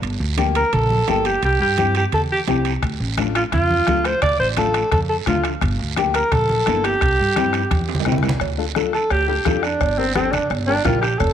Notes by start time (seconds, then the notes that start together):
0.02 G1, high timbale, long guiro
0.20 D2
0.37 A#3 D4 G4, high conga, high timbale, short guiro
0.55 A#4, high timbale, short guiro
0.73 A#1 A4, low conga, high timbale, long guiro
0.90 high conga
1.08 G1 A#3 D4 G4 A4, high conga, high timbale, low timbale, short guiro
1.25 G4, high timbale, short guiro
1.42 C2 G4, high timbale, long guiro
1.60 G2 G4
1.77 C4 E4 G4, high conga, high timbale, short guiro
1.95 G4, high timbale, short guiro
2.12 E2 A4, low conga, high timbale, long guiro
2.32 G4
2.47 C2 C4 E4 G4, high conga, high timbale, low timbale, short guiro
2.65 high timbale, short guiro
2.82 D2, bombo low, bombo rim, high timbale, long guiro
3.00 A1
3.17 A3 D4 F4, bombo rim, high conga, high timbale, short guiro
3.35 F4, bombo rim, high timbale, short guiro
3.52 F2 F4, bombo low, bombo rim, low conga, high timbale, long guiro
3.71 high conga
3.87 D2 A3 D4 F4, bombo rim, high conga, high timbale, short guiro
4.05 C5, bombo rim, high timbale, short guiro
4.22 D2 D5, bombo low, bombo rim, low conga, high timbale, long guiro
4.39 A1 C5
4.57 A3 D4 F4 A4, bombo rim, high conga, high timbale, short guiro
4.74 bombo rim, high timbale, short guiro
4.92 F2 A4, bombo low, bombo rim, low conga, high timbale, long guiro
5.09 A4
5.26 D2 A3 D4 F4, bombo low, bombo rim, high conga, low conga, high timbale, short guiro
5.44 bombo rim, high timbale, short guiro
5.61 G1, bombo low, bombo rim, low conga, high timbale, long guiro
5.79 D2
5.96 A#3 D4 G4, bombo rim, high conga, high timbale, short guiro
6.14 A#4, bombo rim, high timbale, short guiro
6.32 A#1 A4, bombo low, bombo rim, low conga, high timbale, long guiro
6.49 high conga
6.66 G1 A#3 D4 E4, bombo rim, high conga, high timbale, short guiro
6.84 G4, bombo rim, high timbale, short guiro
7.01 C2, bombo low, bombo rim, high timbale, long guiro
7.19 G2
7.36 C4 E4 G4, bombo rim, high conga, high timbale, short guiro
7.53 bombo rim, high timbale, short guiro
7.71 E2, bombo low, bombo rim, high conga, high timbale, long guiro
7.89 high timbale
7.95 low conga
8.00 low timbale
8.05 C2 C4 E4 G4, bombo rim, low conga, short guiro
8.12 low timbale
8.18 low conga
8.23 bombo rim, low timbale, short guiro
8.29 low conga
8.40 D2, bombo low, bombo rim, cowbell, high conga, long guiro
8.58 D4 F4 A4
8.75 D4 F4 A4, bombo rim, high conga, short guiro
8.93 A4, bombo rim, short guiro
9.10 D2 G4, bombo rim, cowbell, high conga, long guiro
9.28 D4 F4 G4 A4
9.45 F2 D4 F4 A4, bombo low, bombo rim, high conga, low timbale, short guiro
9.62 D4, bombo rim, short guiro
9.81 G1, bombo low, bombo rim, cowbell, high conga, long guiro
9.98 C4 D4 G4 A#4
10.15 C4 D4 G4 A4, bombo rim, high conga, short guiro
10.31 D4, bombo rim, low conga, short guiro
10.50 G1, bombo rim, cowbell, high conga, long guiro
10.67 D4 G4 A#4
10.85 A#1 D4 F4 G4 A#4, bombo low, bombo rim, high conga, low conga, low timbale, short guiro
11.01 G4, bombo rim, short guiro
11.18 F1 A4, bombo low, bombo rim, cowbell, high conga, long guiro